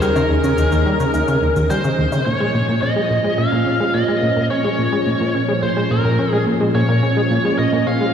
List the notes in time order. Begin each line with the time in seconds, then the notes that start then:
Already playing: D#2 D#3 C#4 G#4 D#5
0.02 G3 A#4, cabasa
0.16 C#3, cabasa, low woodblock
0.30 D#2
0.44 C#3, cabasa
0.58 D#2, cabasa
0.72 D#2, cabasa
0.86 G3
1.00 C#3, cabasa
1.14 D#2, cabasa, low woodblock
1.28 C#3, cabasa
1.42 D#2
1.56 D#2, cabasa
1.70 G3 C5, cabasa
1.84 C#3, cabasa
1.98 D#2
2.12 C#3, cabasa, low woodblock
2.26 A#2 F3 C#4 C#5
2.40 G#3
2.54 A#2
2.68 A#2
2.82 C#4 D#5
2.96 G#3
3.10 A#2
3.24 G#3
3.38 A#2 F5
3.52 A#2
3.66 C#4
3.80 G#3
3.94 A#2 D#5
4.08 G#3
4.22 A#2
4.36 A#2
4.50 C#4 C#5
4.64 G#3
4.78 A#2
4.92 G#3
5.06 A#2
5.21 A#2
5.34 C#4
5.48 G#3
5.63 A#2 C5
5.77 G#3
5.91 A#2 A#4
6.05 A#2
6.19 C#4
6.33 G#3
6.46 A#2
6.61 G#3
6.75 A#2 C#5
6.89 A#2
7.03 C#4
7.17 G#3
7.31 A#2
7.45 G#3
7.59 A#2 D#5
7.73 A#2
7.87 C#4 F5
8.01 G#3